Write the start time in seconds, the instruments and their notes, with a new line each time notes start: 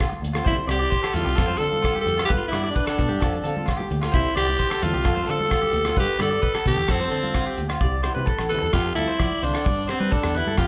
Already playing: fingered electric bass D3
0.00 kick, cross-stick, low agogo
0.10 muted clean electric guitar stroke, high conga, maracas
0.22 fingered electric bass D2, closed hi-hat, low conga, maracas
0.33 clean electric guitar F4, steel-string acoustic guitar A4, cross-stick, low agogo, maracas
0.37 steel-string acoustic guitar C4 F4
0.45 fingered electric bass C2, steel-string acoustic guitar G3 C4 E4 G4, alto saxophone E4, clean electric guitar C5, kick, low conga, maracas
0.58 maracas
0.67 fingered electric bass C2, steel-string acoustic guitar G3, alto saxophone G4, clean electric guitar D5, cross-stick, closed hi-hat, high conga, low agogo, maracas
0.72 steel-string acoustic guitar C4 G4
0.80 steel-string acoustic guitar E4 G4, clean electric guitar D5, maracas
0.91 clean electric guitar C5, kick, maracas
1.03 clean electric guitar A4, cross-stick, low agogo, maracas
1.14 fingered electric bass E2, steel-string acoustic guitar G3 C4 E4, alto saxophone F4, closed hi-hat, high conga, low conga, maracas
1.19 steel-string acoustic guitar G4
1.25 fingered electric bass C2, clean electric guitar G4, maracas
1.36 fingered electric bass F2, steel-string acoustic guitar F3 C4, clean electric guitar A4, kick, cross-stick, low agogo, maracas
1.40 steel-string acoustic guitar F4 A4
1.47 clean electric guitar C5, high conga, maracas
1.58 fingered electric bass D3, steel-string acoustic guitar F3 C4, alto saxophone A4, clean electric guitar A4, closed hi-hat, maracas
1.63 steel-string acoustic guitar F4 A4
1.72 steel-string acoustic guitar C4 F4, muted steel-string acoustic guitar stroke, high conga, maracas
1.82 clean electric guitar F4, kick, cross-stick, low agogo, maracas
1.95 clean electric guitar G4, high conga, maracas
2.02 alto saxophone A4
2.06 fingered electric bass F2, closed hi-hat, low conga, maracas
2.17 steel-string acoustic guitar C4 F4 A4, clean electric guitar F4, cross-stick, low agogo
2.25 alto saxophone G4, clean electric guitar B4
2.29 fingered electric bass G2, steel-string acoustic guitar B3 G4, muted steel-string acoustic guitar stroke, kick, low conga, maracas
2.37 alto saxophone F4
2.42 maracas
2.48 fingered electric bass G2, steel-string acoustic guitar B3, alto saxophone E4, clean electric guitar D5
2.53 steel-string acoustic guitar D4 G4, cross-stick, closed hi-hat, high conga, low agogo, maracas
2.63 steel-string acoustic guitar D4 G4, clean electric guitar D5, maracas
2.71 alto saxophone D4
2.75 clean electric guitar B4, kick, maracas
2.86 clean electric guitar A4, cross-stick, low agogo
2.96 fingered electric bass B2, steel-string acoustic guitar B3 D4, muted steel-string acoustic guitar stroke, kick, closed hi-hat, high conga, maracas
3.09 fingered electric bass G2, clean electric guitar G4, maracas
3.20 fingered electric bass F2, steel-string acoustic guitar F3 C4 F4 A4, clean electric guitar A4, kick, cross-stick, low agogo, maracas
3.33 high conga, maracas
3.44 fingered electric bass D3, steel-string acoustic guitar F3 C4 F4 A4, clean electric guitar A4, closed hi-hat, maracas
3.56 steel-string acoustic guitar C4 F4 A4, high conga
3.66 clean electric guitar F4, kick, cross-stick, low agogo, maracas
3.77 clean electric guitar G4, high conga, maracas
3.90 fingered electric bass D2, closed hi-hat, low conga, maracas
4.01 clean electric guitar F4, steel-string acoustic guitar F4 A4, cross-stick, low agogo
4.06 steel-string acoustic guitar C4
4.12 fingered electric bass C2, steel-string acoustic guitar G3 C4 E4 G4, alto saxophone E4, clean electric guitar C5, kick, low conga, maracas
4.24 maracas
4.35 fingered electric bass C2, steel-string acoustic guitar G3 C4 E4 G4, alto saxophone G4, clean electric guitar D5, cross-stick, closed hi-hat, high conga, low agogo
4.47 steel-string acoustic guitar C4 E4 G4, clean electric guitar D5, maracas
4.58 clean electric guitar C5, kick, maracas
4.70 clean electric guitar A4, cross-stick, low agogo
4.79 fingered electric bass E2, steel-string acoustic guitar G3 C4, closed hi-hat, high conga, low conga, maracas
4.83 steel-string acoustic guitar E4, alto saxophone F4
4.92 fingered electric bass C2, clean electric guitar G4, maracas
5.04 fingered electric bass F2, steel-string acoustic guitar F3 C4 F4 A4, clean electric guitar A4, kick, cross-stick, low agogo, maracas
5.16 clean electric guitar C5, high conga, maracas
5.26 fingered electric bass D3, steel-string acoustic guitar F3 C4, clean electric guitar A4, closed hi-hat, maracas
5.30 steel-string acoustic guitar F4 A4, alto saxophone A4
5.39 steel-string acoustic guitar C4 F4, high conga, maracas
5.50 clean electric guitar F4, kick, cross-stick, low agogo, maracas
5.62 clean electric guitar G4, high conga, maracas
5.73 fingered electric bass D2, closed hi-hat, low conga
5.85 clean electric guitar F4, steel-string acoustic guitar F4 A4, cross-stick, low agogo
5.89 steel-string acoustic guitar C4
5.95 fingered electric bass G2, steel-string acoustic guitar B3 D4 G4, clean electric guitar B4, kick, low conga, maracas
6.00 alto saxophone G4
6.09 maracas
6.19 fingered electric bass G2, steel-string acoustic guitar B3 D4 G4, alto saxophone A4, clean electric guitar D5, cross-stick, closed hi-hat, high conga, low conga, low agogo, maracas
6.30 steel-string acoustic guitar D4 G4, clean electric guitar D5, maracas
6.42 clean electric guitar B4, kick, maracas
6.54 clean electric guitar A4, cross-stick, low agogo, maracas
6.65 fingered electric bass B2, steel-string acoustic guitar B3 D4 G4, alto saxophone G4, kick, closed hi-hat, low conga, maracas
6.77 fingered electric bass E2, clean electric guitar G4, maracas
6.88 fingered electric bass F2, steel-string acoustic guitar A3 C4, alto saxophone C4, clean electric guitar A4, muted steel-string acoustic guitar stroke, kick, cross-stick, low agogo, maracas
7.00 clean electric guitar C5, high conga
7.11 fingered electric bass D3, steel-string acoustic guitar A3 C4, clean electric guitar A4, muted steel-string acoustic guitar stroke, closed hi-hat, maracas
7.22 steel-string acoustic guitar C4 F4, high conga, maracas
7.34 clean electric guitar F4, kick, cross-stick, low agogo, maracas
7.47 clean electric guitar G4, maracas
7.57 fingered electric bass D2, closed hi-hat, low conga, maracas
7.69 clean electric guitar F4, steel-string acoustic guitar F4, cross-stick, low agogo, maracas
7.73 steel-string acoustic guitar C4
7.80 fingered electric bass C2, steel-string acoustic guitar G3 C4 E4 G4, clean electric guitar D5, kick, maracas
8.03 steel-string acoustic guitar G3 C4 E4, clean electric guitar C5, cross-stick, closed hi-hat, low agogo, maracas
8.08 steel-string acoustic guitar G4
8.15 fingered electric bass C3, steel-string acoustic guitar E4 G4, clean electric guitar B4, high conga, maracas
8.19 steel-string acoustic guitar C4
8.26 clean electric guitar A4, kick, maracas
8.39 fingered electric bass A1, cross-stick, low agogo
8.49 steel-string acoustic guitar G3 C4, alto saxophone A4, clean electric guitar B4, closed hi-hat, low conga, maracas
8.54 steel-string acoustic guitar E4 G4
8.62 fingered electric bass E2, clean electric guitar A4, high conga, maracas
8.73 fingered electric bass F2, steel-string acoustic guitar F3 C4, alto saxophone F4, clean electric guitar G4, kick, cross-stick, low agogo, maracas
8.77 steel-string acoustic guitar F4 A4
8.85 steel-string acoustic guitar C4 F4 A4
8.95 fingered electric bass D2, steel-string acoustic guitar F3 C4 F4, alto saxophone E4, clean electric guitar A4, closed hi-hat, high conga, maracas
9.08 clean electric guitar C5, maracas
9.19 fingered electric bass F3, clean electric guitar D5, kick, cross-stick, low agogo, maracas
9.31 high conga
9.42 fingered electric bass C2, steel-string acoustic guitar F3 F4 A4, alto saxophone D4, clean electric guitar C5, closed hi-hat, low conga, maracas
9.53 clean electric guitar A4, cross-stick, low agogo, maracas
9.64 fingered electric bass G2, steel-string acoustic guitar B3 D4 G4, clean electric guitar D5, kick, maracas
9.88 steel-string acoustic guitar B3 D4, alto saxophone C4, clean electric guitar C5, cross-stick, closed hi-hat, low agogo, maracas
9.92 steel-string acoustic guitar G4
10.00 fingered electric bass G3, steel-string acoustic guitar D4 G4, clean electric guitar B4, high conga, maracas
10.11 alto saxophone D4, clean electric guitar A4, kick, maracas
10.23 fingered electric bass E2, cross-stick, low agogo
10.34 steel-string acoustic guitar B3 D4 G4, alto saxophone E4, clean electric guitar B4, closed hi-hat, low conga, maracas
10.46 fingered electric bass G2, clean electric guitar A4, high conga, maracas
10.57 fingered electric bass F2, steel-string acoustic guitar F3 C4 F4 A4, alto saxophone F4, clean electric guitar G4, kick, cross-stick, low agogo, maracas